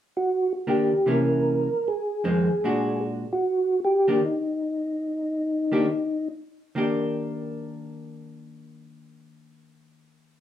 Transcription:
0.17 0.53 F#4 medium
0.67 0.91 D#3 soft
0.67 0.91 A#3 medium
0.67 0.91 D4 medium
0.67 0.91 G4 medium
0.67 1.09 G4 medium
1.06 1.66 C3 medium
1.06 1.67 E3 medium
1.06 1.67 A#3 medium
1.06 1.67 C#4 medium
1.06 1.89 A#4 medium
1.88 3.00 G#4 loud
2.24 2.48 F2 medium
2.24 2.48 D#3 medium
2.24 2.48 G#3 medium
2.24 2.48 C4 medium
2.64 3.24 A#2 medium
2.64 3.24 G#3 soft
2.64 3.24 D4 medium
2.64 3.24 F#4 medium
3.33 3.80 F#4 loud
3.85 4.24 G4 medium
4.08 4.20 D#3 medium
4.08 4.20 A#3 medium
4.08 4.20 D4 medium
4.08 4.21 G4 medium
4.24 6.28 D#4 medium
5.72 5.85 D#3 medium
5.72 5.85 A#3 medium
5.72 5.86 D4 medium
5.72 5.86 G4 medium
6.75 10.40 D#3 medium
6.75 10.40 A#3 medium
6.75 10.40 D4 medium
6.75 10.40 G4 medium

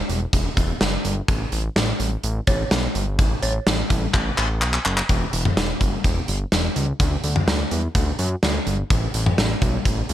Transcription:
0.09 0.26 E1 loud
0.09 closed hi-hat medium
0.33 0.50 E1 loud
0.33 kick loud
0.33 closed hi-hat medium
0.57 0.74 E1 loud
0.57 kick medium
0.57 closed hi-hat medium
0.81 0.98 F#1 loud
0.81 snare loud
0.81 closed hi-hat medium
1.05 1.21 G1 medium
1.05 closed hi-hat medium
1.28 1.45 A1 loud
1.28 kick loud
1.28 closed hi-hat medium
1.52 1.69 A1 loud
1.52 closed hi-hat medium
1.76 1.93 A1 loud
1.76 snare loud
1.76 closed hi-hat medium
2.00 2.16 A1 loud
2.00 closed hi-hat medium
2.23 2.40 A1 loud
2.23 closed hi-hat medium
2.47 2.64 A1 loud
2.47 kick loud
2.47 closed hi-hat medium
2.47 cowbell medium
2.71 2.88 B1 loud
2.71 snare loud
2.71 closed hi-hat medium
2.95 3.20 G1 medium
2.95 closed hi-hat medium
3.19 3.36 A1 loud
3.19 kick loud
3.19 closed hi-hat medium
3.43 3.59 A1 loud
3.43 closed hi-hat medium
3.43 cowbell medium
3.67 3.83 A1 loud
3.67 snare loud
3.67 closed hi-hat medium
3.90 4.07 A1 loud
3.90 kick medium
3.90 closed hi-hat medium
4.14 4.31 A1 loud
4.14 kick loud
4.14 clap medium
4.38 4.63 A1 loud
4.38 clap medium
4.62 4.78 B1 loud
4.62 clap medium
4.74 clap medium
4.86 5.02 F#1 medium
4.86 clap loud
4.97 clap medium
5.09 5.26 E1 loud
5.09 kick loud
5.09 closed hi-hat medium
5.33 5.50 E1 loud
5.33 closed hi-hat medium
5.45 mid tom loud
5.57 5.74 E1 loud
5.57 snare loud
5.57 closed hi-hat medium
5.81 5.97 F#1 medium
5.81 kick medium
5.81 closed hi-hat medium
6.04 6.21 E1 loud
6.04 kick medium
6.04 closed hi-hat medium
6.28 6.45 G1 medium
6.28 closed hi-hat medium
6.52 6.69 E1 loud
6.52 snare loud
6.52 closed hi-hat medium
6.76 6.93 C#2 medium
6.76 closed hi-hat medium
7.00 7.17 D2 loud
7.00 kick loud
7.00 closed hi-hat medium
7.24 7.40 D2 medium
7.24 closed hi-hat medium
7.36 mid tom medium
7.47 7.64 D2 loud
7.47 snare loud
7.47 closed hi-hat medium
7.71 7.88 E2 medium
7.71 closed hi-hat medium
7.95 8.12 D2 loud
7.95 kick loud
7.95 closed hi-hat medium
8.19 8.36 F#2 loud
8.19 closed hi-hat medium
8.43 8.59 D2 loud
8.43 snare loud
8.43 closed hi-hat medium
8.67 8.83 G1 medium
8.67 closed hi-hat medium
8.90 9.07 A1 loud
8.90 kick loud
8.90 closed hi-hat medium
9.14 9.31 A1 loud
9.14 closed hi-hat medium
9.26 mid tom medium
9.38 9.55 A1 medium
9.38 snare loud
9.38 closed hi-hat medium
9.62 9.79 B1 loud
9.62 kick medium
9.62 closed hi-hat medium
9.85 10.02 A1 loud
9.85 kick medium
9.85 closed hi-hat medium
10.09 10.13 C#2 medium
10.09 closed hi-hat medium

